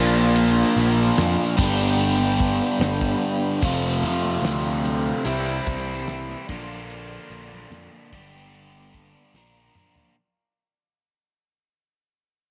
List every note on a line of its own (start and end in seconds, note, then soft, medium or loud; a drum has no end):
0.00 0.63 A#1 loud
0.00 1.56 A#2 medium
0.00 1.56 F3 medium
0.00 1.56 A#3 loud
0.00 1.56 D4 medium
0.00 3.58 D4 medium
0.00 1.56 F4 medium
0.00 1.57 F4 loud
0.00 1.56 A#4 medium
0.00 1.56 F5 medium
0.36 closed hi-hat loud
0.76 1.10 A#1 medium
0.76 snare soft
0.76 closed hi-hat medium
1.18 1.35 F2 medium
1.18 snare loud
1.18 closed hi-hat loud
1.56 2.60 G1 loud
1.56 3.59 G2 medium
1.56 3.60 D3 loud
1.56 3.60 G3 loud
1.56 3.60 B3 loud
1.56 3.60 D4 loud
1.56 3.59 G4 medium
1.56 3.59 B4 medium
1.56 3.59 G5 medium
1.56 kick loud
1.56 closed hi-hat medium
1.60 3.60 G4 loud
2.00 closed hi-hat loud
2.40 kick medium
2.40 closed hi-hat medium
2.79 3.14 G1 loud
2.79 snare loud
2.79 closed hi-hat loud
3.01 kick medium
3.22 closed hi-hat medium
3.62 4.04 F1 loud
3.62 5.23 F2 medium
3.62 5.23 C3 loud
3.62 5.23 F3 loud
3.62 5.23 A3 loud
3.62 6.45 C4 medium
3.62 5.24 C4 loud
3.62 5.24 F4 medium
3.62 5.24 F4 loud
3.62 5.24 A4 medium
3.62 5.23 F5 medium
3.62 kick loud
3.62 closed hi-hat loud
4.02 4.37 F2 medium
4.02 closed hi-hat medium
4.25 high conga medium
4.42 5.11 D2 loud
4.42 snare loud
4.42 closed hi-hat medium
4.85 closed hi-hat medium
4.85 low conga medium
5.24 5.59 C2 medium
5.24 6.45 C3 medium
5.24 6.45 E3 medium
5.24 6.46 G3 loud
5.24 6.46 C4 loud
5.24 6.46 E4 medium
5.24 6.46 E4 loud
5.24 6.46 G4 medium
5.24 6.46 E5 medium
5.24 closed hi-hat loud
5.67 6.34 C2 medium
5.67 kick medium
5.67 closed hi-hat medium
5.67 high conga medium
6.08 snare loud
6.08 closed hi-hat loud
6.29 high conga medium
6.47 7.17 A#1 loud
6.47 8.09 A#2 medium
6.47 8.09 D3 medium
6.47 8.09 A#3 medium
6.47 8.10 A#3 medium
6.47 10.11 D4 medium
6.47 8.09 F4 medium
6.47 9.30 D5 medium
6.47 kick loud
6.47 closed hi-hat medium
6.47 high conga medium
6.47 low conga medium
6.51 8.10 D4 medium
6.51 8.11 F4 loud
6.90 closed hi-hat loud
7.30 7.64 A#1 medium
7.30 closed hi-hat medium
7.52 high conga medium
7.52 low conga medium
7.70 7.87 F2 medium
7.70 snare loud
7.70 closed hi-hat medium
7.93 high conga medium
8.12 9.14 G1 loud
8.12 9.32 G2 loud
8.12 9.32 D3 loud
8.12 9.33 G3 medium
8.12 9.33 B3 medium
8.12 9.33 B3 loud
8.12 9.33 D4 loud
8.12 9.33 G4 medium
8.12 9.33 G4 loud
8.12 kick loud
8.12 closed hi-hat medium
8.12 low conga medium
8.54 closed hi-hat loud
8.94 kick medium
8.94 closed hi-hat medium
8.94 high conga medium
9.33 9.68 A#1 loud
9.33 10.14 A#2 medium
9.33 10.14 D3 loud
9.33 10.14 F3 medium
9.33 10.14 A#3 medium
9.33 10.14 A#3 loud
9.33 10.15 D4 loud
9.33 10.14 F4 medium
9.33 10.15 A#4 loud
9.33 10.15 D5 medium
9.33 snare medium
9.56 high conga medium
9.75 mid tom loud
9.75 low conga medium
9.96 floor tom medium
9.96 low conga medium